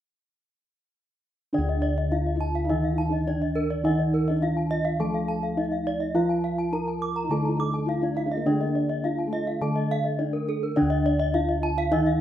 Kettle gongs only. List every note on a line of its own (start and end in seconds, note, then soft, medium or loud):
1.53 3.22 D4 soft
1.58 4.98 D2 medium
2.11 2.19 D#4 soft
3.26 3.34 D#4 soft
3.84 4.40 D#4 medium
4.41 4.49 D#4 soft
4.99 6.69 F3 medium
5.57 5.65 D#4 soft
6.15 7.84 F4 medium
6.72 6.80 D#4 soft
7.29 8.99 D3 medium
7.88 7.96 D#4 soft
8.46 10.15 D4 medium
9.04 9.12 D#4 soft
9.61 11.30 D3 medium
10.20 10.28 D#4 soft
10.77 12.21 D4 medium
10.82 12.21 D2 medium
11.35 11.43 D#4 soft